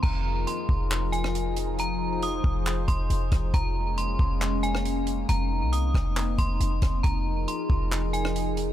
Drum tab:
CC |x---------------|----------------|----------------|----------------|
HH |----x---x-x-x-x-|x---x---x-x-x-x-|x---x---x-x-x-x-|x---x---x-x-x-x-|
CP |--------x-------|--------x-------|--------x-------|--------x-------|
SD |-----------r----|--------------r-|-----------r----|------r-------r-|
BD |o-----o---------|------o---o---o-|o-----o---------|------o---o---o-|

CC |----------------|
HH |x---x---x-x-x-x-|
CP |--------x-------|
SD |-----------r----|
BD |o-----o---------|